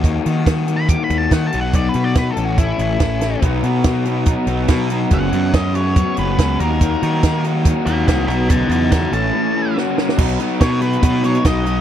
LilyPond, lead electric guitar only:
\new Staff \with { instrumentName = "Lead electric guitar" } { \time 4/4 \key b \major \tempo 4 = 142 r4 \tuplet 3/2 { r4 b''8 d'''8 b''8 a''8 fis''8 a''8 fis''8 } | \tuplet 3/2 { d''8 b'8 d''8 b'8 a'8 fis'8 } e'2 | r1 | fis''4 dis''8 cis''4 b'4 ais'8~ |
ais'4. r4 <dis'' b''>8 <dis'' b''>8 <dis'' b''>8 | <fis'' a''>8 <fis'' a''>8 <fis'' a''>8 a''4. r4 | r4 cis''8 b'8 b'8 cis''8 dis''4 | }